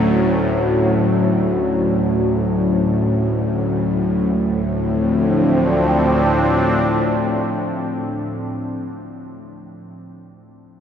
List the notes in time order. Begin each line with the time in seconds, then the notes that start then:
Already playing: D2 A2 F#3 C#4 E4 A4
4.32 D2 A2
4.50 F3
4.62 C4
4.80 D4